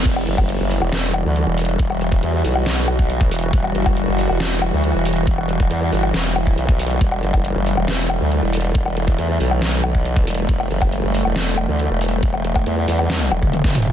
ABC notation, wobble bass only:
X:1
M:4/4
L:1/16
Q:1/4=138
K:Em
V:1 name="Wobble bass" clef=bass
E,,,2 F,,,3 F,,,2 E,,,4 D,,2 E,,,3 | z4 E,,2 B,,,8 E,,,2 | E,,,2 F,,,3 F,,,2 E,,,4 D,,2 E,,,3 | E,,,4 E,,2 G,,,2 E,,,4 B,,,4 |
E,,,2 F,,,3 F,,,2 E,,,4 D,,2 E,,,3 | E,,,4 E,,2 B,,,8 E,,,2 | E,,,2 F,,,3 F,,,2 E,,,4 D,,2 E,,,3 | E,,,4 E,,2 E,,4 E,,, E,,,2 E,,,3 |]